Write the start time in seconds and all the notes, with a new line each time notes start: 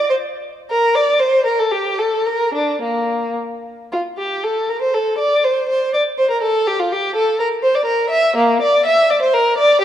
0.10 C5
0.70 A#4
0.95 D5
1.20 C5
1.46 A#4
1.59 A4
1.71 G4
1.99 A4
2.26 A#4
2.54 D4
2.82 A#3
3.92 F4
4.18 G4
4.43 A4
4.69 A#4
4.81 C5
4.94 A4
5.19 D5
5.44 C5
5.69 C5
5.93 D5
6.18 C5
6.31 A#4
6.42 A4
6.67 G4
6.79 F4
6.92 G4
7.16 A4
7.40 A#4
7.63 C5
7.75 D5
7.85 A#4
8.10 E5
8.37 A#3
8.62 D5
8.86 E5
9.10 D5
9.22 C5
9.34 A#4
9.58 D5
9.81 G4